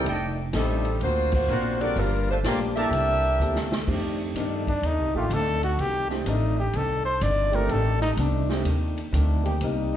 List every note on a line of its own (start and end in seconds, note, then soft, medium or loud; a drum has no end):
0.04 0.51 F1 medium
0.04 0.39 F2 soft
0.04 0.40 D#3 medium
0.04 0.40 A3 medium
0.04 0.40 D4 medium
0.04 0.28 A4 medium
0.04 0.28 D5 medium
0.04 0.27 D#5 medium
0.04 0.28 G5 medium
0.04 ride medium
0.53 1.00 A1 medium
0.53 0.87 F2 medium
0.53 0.87 D#3 medium
0.53 0.99 G3 medium
0.53 0.87 A3 medium
0.53 0.99 C4 medium
0.53 0.88 D4 medium
0.53 0.99 D#4 medium
0.53 0.99 A4 medium
0.53 snare medium
0.53 hi-hat pedal medium
0.53 ride medium
0.85 ride soft
1.01 1.47 D2 medium
1.01 1.35 D3 soft
1.01 1.35 A#3 soft
1.01 1.34 A#3 medium
1.01 1.36 C4 soft
1.01 1.34 F4 medium
1.01 1.34 F#4 medium
1.01 1.36 F#4 soft
1.01 1.34 C5 medium
1.01 ride medium
1.32 1.79 A#3 medium
1.32 1.79 F4 medium
1.32 1.79 F#4 medium
1.32 1.79 C5 medium
1.32 kick medium
1.32 crash medium
1.48 1.95 A#1 medium
1.48 1.83 D3 medium
1.48 1.83 A#3 medium
1.48 1.83 C4 medium
1.48 1.84 F#4 medium
1.48 1.71 A#4 medium
1.48 1.71 C5 medium
1.48 1.71 D5 medium
1.48 1.71 F#5 medium
1.48 hi-hat pedal medium
1.81 1.95 G3 medium
1.81 1.95 A#3 medium
1.81 1.97 C4 medium
1.81 1.96 D4 medium
1.81 1.96 F4 medium
1.81 1.97 F#4 medium
1.81 1.96 A4 medium
1.81 1.97 A#4 medium
1.81 1.97 D5 medium
1.81 ride soft
1.96 2.43 G1 medium
1.96 2.31 G2 soft
1.96 2.31 F3 soft
1.96 2.30 G3 medium
1.96 2.30 D4 medium
1.96 2.30 F4 medium
1.96 2.30 A#4 medium
1.96 ride medium
2.00 2.32 A#3 soft
2.00 2.32 D4 soft
2.31 2.38 A3 medium
2.31 2.38 D4 medium
2.31 2.38 F4 medium
2.31 2.38 C5 medium
2.44 2.90 A#1 medium
2.44 2.78 G2 medium
2.44 2.79 F3 medium
2.44 2.59 A#3 medium
2.44 2.79 A#3 medium
2.44 2.79 D4 medium
2.44 2.60 F4 medium
2.44 2.60 G4 medium
2.44 2.59 D5 medium
2.44 snare medium
2.44 hi-hat pedal medium
2.44 ride medium
2.76 2.90 G3 medium
2.76 2.91 A#3 medium
2.76 2.91 D4 medium
2.76 3.68 D4 medium
2.76 2.91 E4 medium
2.76 3.68 G4 medium
2.76 2.91 A4 medium
2.76 2.87 A#4 medium
2.76 3.68 A#4 medium
2.76 2.87 D5 medium
2.76 2.87 E5 medium
2.76 3.68 E5 loud
2.76 2.87 A5 loud
2.76 ride soft
2.91 3.38 C2 medium
2.91 3.26 C3 soft
2.91 3.26 A#3 soft
2.91 3.26 E4 soft
2.91 ride medium
2.95 3.27 A4 medium
3.39 3.86 D2 medium
3.39 3.74 C3 medium
3.39 3.74 A#3 medium
3.39 3.74 E4 medium
3.39 hi-hat pedal medium
3.43 3.75 A4 medium
3.56 snare medium
3.72 snare medium
3.87 4.34 F2 medium
3.87 4.21 F2 soft
3.87 4.22 D#3 medium
3.87 4.61 A3 medium
3.87 4.22 A3 medium
3.87 4.61 C4 medium
3.87 4.61 D4 soft
3.87 4.22 D4 medium
3.87 4.61 D#4 soft
3.87 4.61 G4 medium
3.87 kick medium
3.87 crash medium
4.34 4.69 F2 medium
4.34 4.81 G2 medium
4.34 4.69 D#3 medium
4.34 4.69 A3 medium
4.34 4.70 D4 medium
4.34 hi-hat pedal medium
4.34 ride medium
4.67 4.88 D4 medium
4.67 kick medium
4.67 ride soft
4.82 4.99 D#2 medium
4.82 5.17 F2 soft
4.82 5.17 D#3 soft
4.82 5.18 A3 soft
4.82 ride medium
4.86 5.18 D4 soft
4.86 5.17 D#4 medium
4.99 5.13 C2 medium
5.14 5.29 A1 medium
5.14 5.25 D#3 medium
5.14 5.25 A3 medium
5.14 5.25 D4 medium
5.14 5.35 F4 medium
5.14 5.25 G4 loud
5.30 5.77 D2 medium
5.30 5.65 F2 medium
5.30 5.65 D#3 medium
5.30 5.65 A3 medium
5.30 5.63 A4 medium
5.30 hi-hat pedal medium
5.30 ride medium
5.34 5.66 D4 medium
5.63 5.82 F#4 medium
5.63 ride soft
5.78 6.25 C2 medium
5.78 6.12 F2 soft
5.78 6.13 D#3 soft
5.78 6.13 A3 soft
5.78 6.14 D4 soft
5.78 6.10 G4 medium
5.78 ride medium
6.10 6.25 A3 medium
6.10 6.25 C4 soft
6.10 6.26 C4 soft
6.10 6.25 D4 soft
6.10 6.25 D#4 medium
6.10 6.25 G4 medium
6.10 snare soft
6.26 6.73 A1 medium
6.26 6.60 F2 medium
6.26 6.60 D#3 medium
6.26 6.61 A3 medium
6.26 6.61 D4 medium
6.26 6.59 D#4 medium
6.26 hi-hat pedal medium
6.26 ride medium
6.59 6.78 G4 medium
6.73 7.20 C2 medium
6.73 7.08 F2 soft
6.73 7.08 D#3 soft
6.73 7.09 A3 soft
6.73 7.09 D4 soft
6.73 7.05 A4 medium
6.73 ride medium
7.05 7.24 C5 medium
7.21 7.68 G1 loud
7.21 7.56 F2 medium
7.21 7.56 D#3 medium
7.21 7.56 A3 medium
7.21 7.56 D4 medium
7.21 7.57 D5 loud
7.21 hi-hat pedal medium
7.21 ride medium
7.52 8.14 D#3 medium
7.52 8.14 A3 medium
7.52 7.68 A3 medium
7.52 7.69 C4 medium
7.52 8.14 D4 medium
7.52 7.69 D4 medium
7.52 7.69 D#4 medium
7.52 8.13 G4 loud
7.52 7.73 A#4 medium
7.52 ride soft
7.56 7.69 A4 medium
7.69 8.16 A1 medium
7.69 8.03 F2 medium
7.69 8.03 D#3 soft
7.69 8.04 A3 medium
7.69 8.04 D4 medium
7.69 8.01 A4 medium
7.69 ride medium
8.01 8.11 D#4 medium
8.01 snare soft
8.17 8.64 C2 medium
8.17 8.51 F2 medium
8.17 8.52 D#3 medium
8.17 8.52 A3 medium
8.17 8.52 D4 medium
8.17 hi-hat pedal medium
8.17 ride medium
8.49 8.64 A3 medium
8.49 8.64 C4 medium
8.49 8.64 D4 medium
8.49 8.64 D#4 medium
8.49 8.65 G4 medium
8.49 snare medium
8.65 9.11 D#2 medium
8.65 8.99 F2 soft
8.65 9.00 D#3 medium
8.65 9.00 A3 medium
8.65 9.00 D4 medium
8.65 ride medium
8.97 ride soft
9.12 9.59 D2 loud
9.12 9.46 F2 medium
9.12 9.47 D#3 medium
9.12 9.47 A3 medium
9.12 9.47 D4 medium
9.12 hi-hat pedal medium
9.12 ride medium
9.43 9.55 D#3 medium
9.43 9.55 A#3 medium
9.43 9.55 C4 medium
9.43 9.56 G4 loud
9.43 ride soft
9.61 9.97 C2 medium
9.61 9.94 C3 medium
9.61 9.95 G3 medium
9.61 9.95 A#3 medium
9.61 9.96 D#4 medium
9.61 ride medium